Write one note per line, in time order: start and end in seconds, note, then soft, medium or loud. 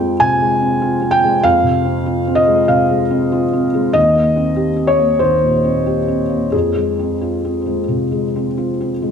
0.00 0.16 F2 medium
0.00 0.41 G#3 medium
0.00 0.62 C4 medium
0.00 0.82 F4 medium
0.00 0.20 G5 loud
0.20 0.53 C3 medium
0.20 1.13 G#5 loud
0.41 0.74 G#3 medium
0.62 0.95 C4 medium
0.82 1.15 F4 medium
1.01 1.35 C4 medium
1.11 1.43 G5 loud
1.24 1.57 G#3 medium
1.43 2.65 F2 medium
1.43 2.38 F5 loud
1.63 1.98 C3 medium
1.85 2.19 C4 medium
2.06 2.40 F4 medium
2.27 2.61 C4 medium
2.35 2.68 D#5 loud
2.47 2.81 G#3 medium
2.68 3.02 C3 soft
2.68 3.00 F5 medium
2.90 3.23 G#3 medium
3.10 3.44 C4 medium
3.32 3.66 F4 medium
3.53 3.87 C4 medium
3.74 3.95 G#3 medium
3.93 5.16 D#2 medium
3.93 4.88 D#5 loud
4.15 4.49 A#3 medium
4.36 4.70 C4 medium
4.56 4.90 G4 medium
4.76 5.11 C4 soft
4.87 5.20 C#5 medium
4.98 5.33 A#3 soft
5.19 6.49 D#2 medium
5.19 6.52 C5 medium
5.43 5.77 A#2 soft
5.64 5.99 C4 soft
5.86 6.21 G4 medium
6.08 6.44 C4 soft
6.29 6.53 A#3 soft
6.52 7.85 F2 medium
6.52 8.89 G#4 medium
6.76 7.12 G#3 soft
6.99 7.35 C4 soft
7.21 7.57 F4 soft
7.44 7.80 C4 soft
7.66 8.02 G#3 soft
7.88 8.24 C3 soft
8.11 8.47 G#3 soft
8.36 8.70 C4 soft
8.58 8.93 F4 soft
8.81 9.11 C4 soft
9.02 9.11 G#3 soft